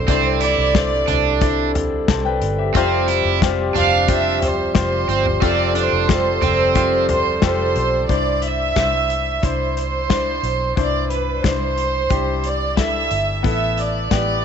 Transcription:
Already playing: D3 G3 C4 D4 E4 B4 C5
0.08 C2 G2 C4 D4 E4 C5 D5, kick, closed hi-hat
0.41 E4 D5, closed hi-hat
0.58 C2
0.75 D4 E4 C5, kick, snare, closed hi-hat
1.07 C2 D4 E4 D5, closed hi-hat, floor tom
1.41 D4 E4 D5, kick, closed hi-hat
1.75 closed hi-hat, floor tom
2.08 C2 C5 A5, kick, snare, closed hi-hat
2.25 B4 G5
2.42 G1, closed hi-hat
2.58 G4 E5
2.74 F1 C3 F3 C4 F4 G4 C5, kick, closed hi-hat
3.08 E4, closed hi-hat
3.25 F1
3.42 F4 G4 C5, kick, snare, closed hi-hat
3.75 F1 D4 F4 G4 C5 F5, closed hi-hat, floor tom
4.08 F4 G4 C5 E5, kick, closed hi-hat
4.42 C5, closed hi-hat, floor tom
4.74 F1 F4 G4 C5, kick, snare, closed hi-hat
5.08 G1 C4, closed hi-hat
5.26 floor tom
5.41 F1 C3 C4 F4 G4 A4 D5, kick, closed hi-hat
5.75 D4 C5, closed hi-hat
5.93 F1
6.09 F4 G4 A4, kick, snare, closed hi-hat
6.42 F1 C4 F4 G4 C5, closed hi-hat, floor tom
6.75 F4 G4 C5, kick, closed hi-hat
7.09 C5, closed hi-hat, floor tom
7.42 F1 F4 G4 A4 C5, kick, snare, closed hi-hat
7.76 B1, closed hi-hat
8.09 C2 G2 D4 E4 C5 D5, kick, closed hi-hat
8.42 E5, closed hi-hat
8.76 C2 D4 E4 C5, kick, snare, closed hi-hat
9.10 closed hi-hat
9.43 C2 D4 E4 C5, kick, closed hi-hat
9.77 C5, closed hi-hat
10.10 D4 E4 C5, kick, snare, closed hi-hat
10.43 B1, closed hi-hat
10.76 C2 G2 D4 E4 C5 D5, kick, closed hi-hat
11.10 B4, closed hi-hat
11.43 C2 D4 E4 C5, kick, snare, closed hi-hat
11.78 closed hi-hat
12.10 C2 D4 E4 G4, kick, closed hi-hat
12.44 D5, closed hi-hat
12.76 D4 E4 A4 E5, kick, snare, closed hi-hat
13.11 G1, closed hi-hat
13.43 A1 B3 E4 A4 E5, kick, closed hi-hat
13.78 D5, closed hi-hat
14.11 A1 B3 E4 G4, kick, snare, closed hi-hat

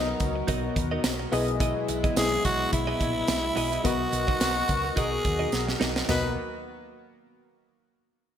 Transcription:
Already playing: B1 B2 F#3 B3 D#4 F#4 A#4 D#5
0.07 muted clean electric guitar stroke
0.20 C#2, kick, closed hi-hat, tambourine
0.35 muted clean electric guitar stroke
0.47 B1 D#4 F#4 A#4 D#5, kick, closed hi-hat
0.63 muted clean electric guitar stroke
0.76 D#2, muted clean electric guitar stroke, kick, closed hi-hat, tambourine
0.91 D#4 F#4 A#4 D#5
1.04 B1, muted clean electric guitar stroke, snare, closed hi-hat, tambourine
1.20 muted clean electric guitar stroke
1.32 B1 B2 G#3 B3 E4 G#4 D#5, open hi-hat, tambourine
1.48 muted clean electric guitar stroke, closed hi-hat
1.60 B3 E4 G#4 D#5, kick, closed hi-hat, tambourine
1.76 muted clean electric guitar stroke
1.88 B1, muted clean electric guitar stroke, closed hi-hat, tambourine
2.04 B3 E4 G#4 D#5, kick, closed hi-hat
2.16 B1 B3 E4 G#4 D#5, snare, closed hi-hat, tambourine
2.31 muted clean electric guitar stroke
2.44 B1 F#4, kick, closed hi-hat, tambourine
2.60 muted clean electric guitar stroke
2.72 B1 E4, muted clean electric guitar stroke, kick, closed hi-hat
2.87 B3 E4 G#4 D#5
3.00 A#1 B3 E4 G#4 D#5, kick, closed hi-hat, tambourine
3.15 muted clean electric guitar stroke
3.28 B1, muted clean electric guitar stroke, snare, closed hi-hat, tambourine
3.44 muted clean electric guitar stroke
3.56 B1 B3 E4 G#4 D#5, open hi-hat, tambourine
3.72 B3 E4 G#4 D#5, closed hi-hat
3.84 B1 B2 B3 D#4 F#4 A#4 D#5, kick, closed hi-hat, tambourine
4.12 B1, muted clean electric guitar stroke, closed hi-hat, tambourine
4.28 D#4 F#4 A#4 D#5, kick
4.40 B1 B3 F#4 A#4 F#5, muted clean electric guitar stroke, snare, closed hi-hat, tambourine
4.56 muted clean electric guitar stroke
4.68 C#2, kick, closed hi-hat, tambourine
4.84 muted clean electric guitar stroke
4.96 B1 D#4 F#4 G#4 A#4 D#5, kick, closed hi-hat, tambourine
5.11 muted clean electric guitar stroke
5.24 D#2, muted clean electric guitar stroke, kick, closed hi-hat, tambourine
5.39 D#4 F#4 A#4 D#5
5.52 B1, muted clean electric guitar stroke, snare, tambourine
5.67 muted clean electric guitar stroke, snare
5.80 B1 D#4 F#4 A#4 D#5, snare, tambourine
5.95 D#4 F#4 A#4 D#5, snare
6.08 B1 D#3 A#3 B3 D#4 F#4 A#4 B4 D#5, snare, floor tom, tambourine, splash

